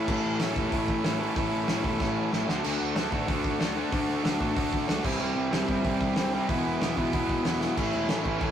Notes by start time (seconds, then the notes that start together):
Already playing: A4
0.07 A1 A2 E3 A3 C#4 E4 A4, kick, crash
0.25 A1
0.39 A1 A2 E3 A3 C#4 E4 A4, snare, open hi-hat
0.54 E1 A2 E3 A3 C#4 E4 A4, kick
0.71 A1 A2 E3 A3 C#4 E4 A4, kick, open hi-hat
0.88 kick
1.03 A1 A2 E3 A3 C#4 E4 A4, snare, open hi-hat
1.19 A2 E3 A3 C#4 E4 A4
1.35 A1 A2 E3 A3 C#4 E4 A4, kick, open hi-hat
1.52 A1
1.68 A1 A2 E3 A3 C#4 E4 A4, snare, open hi-hat
1.83 E1 A2 E3 A3 C#4 E4 A4, kick
2.00 A1 A2 E3 A3 C#4 E4 A4, kick, snare
2.31 A1 A2 E3 A3 C#4 E4 A4, snare
2.47 D2 D3 A3 D4 F#4 A4, snare
2.64 D2 D3 A3 D4 F#4 A4, splash, crash
2.81 D2
2.96 D2 D3 A3 D4 F#4 A4, snare, open hi-hat
3.11 A1 D3 A3 D4 F#4 A4, kick
3.28 D2 D3 A3 D4 F#4 A4, kick, open hi-hat
3.44 kick
3.60 D2 D3 A3 D4 F#4 A4, snare, open hi-hat
3.76 D3 A3 D4 F#4 A4
3.92 D2 D3 A3 D4 F#4 A4, kick, open hi-hat
4.08 D2
4.24 D2 D3 A3 D4 F#4 A4, snare, open hi-hat
4.40 A1 D3 A3 D4 F#4 A4, kick
4.55 D2 D3 A3 D4 F#4 A4, kick, open hi-hat
4.73 kick
4.88 C#2 D3 A3 D4 F#4 A4, snare, open hi-hat
5.03 C2 C3 E3 G3 C4 E4, kick, crash
5.19 C2 C3 E3 G3 C4 E4
5.36 C2
5.51 C2 C3 E3 G3 C4 E4, snare, open hi-hat
5.68 G1 C3 E3 G3 C4 E4, kick
5.83 C2 C3 E3 G3 C4 E4, kick, open hi-hat
6.01 kick
6.15 C2 C3 E3 G3 C4 E4, snare, open hi-hat
6.32 C3 E3 G3 C4 E4
6.48 E1 E2 B2 E3 G#3 B3 E4, kick, open hi-hat
6.66 E1
6.80 E1 E2 B2 E3 G#3 B3 E4, snare, open hi-hat
6.97 B1 E2 B2 E3 G#3 B3 E4, kick
7.12 E1 E2 B2 E3 G#3 B3 E4, kick, open hi-hat
7.29 kick
7.45 E1 E2 B2 E3 G#3 B3 E4, snare, open hi-hat
7.60 E2 B2 E3 G#3 B3 E4, snare
7.76 A1 A2 E3 A3 C#4 E4, kick, crash
7.93 E1, crash
8.09 A1 A2 E3 A3 C#4 E4, snare, crash
8.25 A2 E3 A3 C#4 E4, kick, crash
8.40 A1 A2 E3 A3 C#4 E4, kick, crash